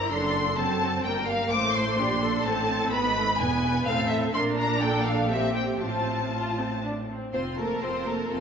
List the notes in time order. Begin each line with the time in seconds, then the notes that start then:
Already playing: E4
0.09 F#1 F#2 D4 A4 C6
0.57 F#2 F#3 C4 A4 A5
0.82 A4
1.04 G1 G2 A#3 A#4 G5
1.27 F5
1.50 A1 A2 A3 C5 D6
1.74 C6
1.98 A#1 A#2 D4 G4
2.23 A4
2.45 A1 A2 C4 A5
2.91 G#1 G#2 B3 B4 B5
3.16 A3
3.38 E1 E2 B3 B4 G#5
3.85 A1 A2 C4 A4 F5
4.09 E5
4.33 A#1 A#2 D4 A#4 C6
4.56 A#5
4.80 A4 G5
5.05 F5
5.30 C4 G4 E5
5.54 G5
5.80 A1 A2 C4 F4 A5
6.32 F4
6.58 C4
6.84 D4
7.10 C4
7.33 F1 C4 F4 C5 C6
7.57 A3 A#3 A4 A#4 A5
7.82 F1 C4 F4 C5 C6
8.06 A3 A#3 A4 A#4 A5
8.30 F1 A3 C4 F4 A4 C6